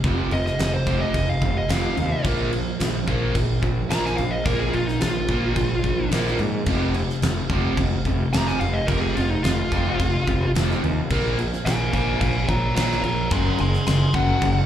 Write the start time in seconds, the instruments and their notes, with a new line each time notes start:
0.04 fingered electric bass F1, overdriven electric guitar F2 C3 F3, kick, crash
0.31 fingered electric bass F1, overdriven electric guitar F2 C3, lead electric guitar D#5, crash
0.46 lead electric guitar D#5, snare
0.59 fingered electric bass F1, overdriven electric guitar F2 C3, snare, crash
0.74 lead electric guitar C5
0.87 fingered electric bass F1, overdriven electric guitar F2 C3 F3, kick, crash
1.01 lead electric guitar D#5
1.14 fingered electric bass F1, overdriven electric guitar F2 C3, kick, crash
1.29 lead electric guitar F5
1.42 fingered electric bass F1, overdriven electric guitar F2 C3, kick, crash
1.58 lead electric guitar D#5
1.69 fingered electric bass F1, overdriven electric guitar F2 C3 F3, lead electric guitar F5, snare, crash
1.96 fingered electric bass D#2, overdriven electric guitar F2 C3, crash
2.24 fingered electric bass A#1, overdriven electric guitar A#2 F3 A#3, kick, crash
2.51 overdriven electric guitar A#2 F3, crash
2.79 fingered electric bass A#1, overdriven electric guitar A#2 F3, snare, crash
3.07 fingered electric bass A#1, overdriven electric guitar A#2 F3 A#3, kick, crash
3.34 fingered electric bass A#1, overdriven electric guitar A#2 F3, kick, crash
3.62 fingered electric bass A#1, overdriven electric guitar A#2 F3, kick, crash
3.90 fingered electric bass A#1, overdriven electric guitar A#2 F3 A#3, lead electric guitar A#5, snare, crash
4.04 lead electric guitar G#5, snare
4.17 fingered electric bass A#1, overdriven electric guitar A#2 F3, lead electric guitar F5, crash
4.31 lead electric guitar D#5
4.45 fingered electric bass A#1, overdriven electric guitar A#2 F3 A#3, lead electric guitar A#4, kick, crash
4.60 lead electric guitar G#4
4.73 fingered electric bass A#1, overdriven electric guitar A#2 F3, lead electric guitar F4, crash
4.87 lead electric guitar D#4, snare
5.01 fingered electric bass A#1, overdriven electric guitar A#2 F3, lead electric guitar F4, snare, crash
5.28 fingered electric bass A#1, overdriven electric guitar A#2 F3 A#3, kick, crash
5.56 fingered electric bass A#1, overdriven electric guitar A#2 F3, kick, crash
5.84 fingered electric bass A#1, overdriven electric guitar A#2 F3, kick, crash
6.11 fingered electric bass A#1, overdriven electric guitar A#2 F3 A#3, snare, crash
6.27 snare
6.39 fingered electric bass G#2, overdriven electric guitar A#2 F3, crash
6.66 fingered electric bass F1, overdriven electric guitar F2 C3 F3, kick, crash
6.94 overdriven electric guitar F2 C3, crash
7.10 snare
7.22 fingered electric bass F1, overdriven electric guitar F2 C3, snare, crash
7.50 fingered electric bass F1, overdriven electric guitar F2 C3 F3, kick, crash
7.77 fingered electric bass F1, overdriven electric guitar F2 C3, kick, crash
8.05 fingered electric bass F1, overdriven electric guitar F2 C3, kick, crash
8.33 fingered electric bass F1, overdriven electric guitar F2 C3 F3, lead electric guitar A#5, snare, crash
8.47 lead electric guitar G#5, snare
8.60 fingered electric bass F1, overdriven electric guitar F2 C3, lead electric guitar F5, crash
8.73 lead electric guitar D#5
8.87 fingered electric bass F1, overdriven electric guitar F2 C3 F3, lead electric guitar A#4, kick, crash
9.01 lead electric guitar G#4
9.15 fingered electric bass F1, overdriven electric guitar F2 C3, lead electric guitar F4, crash
9.30 lead electric guitar D#4
9.43 fingered electric bass F1, overdriven electric guitar F2 C3, lead electric guitar F4, snare, crash
9.71 fingered electric bass F1, overdriven electric guitar F2 C3 F3, kick, crash
9.99 fingered electric bass F1, overdriven electric guitar F2 C3, kick, crash
10.27 fingered electric bass F1, overdriven electric guitar F2 C3, kick, crash
10.55 fingered electric bass F1, overdriven electric guitar F2 C3 F3, snare, crash
10.71 snare
10.83 fingered electric bass D#2, overdriven electric guitar F2 C3, crash
11.11 fingered electric bass A#1, overdriven electric guitar A#2 F3 A#3, kick, crash
11.38 overdriven electric guitar A#2 F3, crash
11.53 snare
11.65 fingered electric bass A#1, overdriven electric guitar A#2 F3, lead electric guitar F5 G#5, snare, crash
11.93 fingered electric bass A#1, overdriven electric guitar A#2 F3 A#3, lead electric guitar F5 G#5, kick, crash
12.21 fingered electric bass A#1, overdriven electric guitar A#2 F3, lead electric guitar F5 G#5, kick, crash
12.48 fingered electric bass A#1, overdriven electric guitar A#2 F3, lead electric guitar C#5 A#5, kick, crash
12.75 fingered electric bass A#1, overdriven electric guitar A#2 F3 A#3, lead electric guitar C#5 A#5, snare, crash
12.91 snare
13.03 fingered electric bass A#1, overdriven electric guitar A#2 F3, lead electric guitar C#5 A#5, crash
13.31 fingered electric bass F#1, overdriven electric guitar F#2 C#3 F#3, lead electric guitar G#5 C6, kick, crash
13.58 fingered electric bass F#1, overdriven electric guitar F#2 C#3, lead electric guitar G#5 C6, crash
13.74 snare
13.87 fingered electric bass F#1, overdriven electric guitar F#2 C#3, lead electric guitar G#5 C6, snare, crash
14.13 fingered electric bass F#1, overdriven electric guitar F#2 C#3 F#3, lead electric guitar F#5, kick, crash
14.42 fingered electric bass F#1, overdriven electric guitar F#2 C#3, kick, crash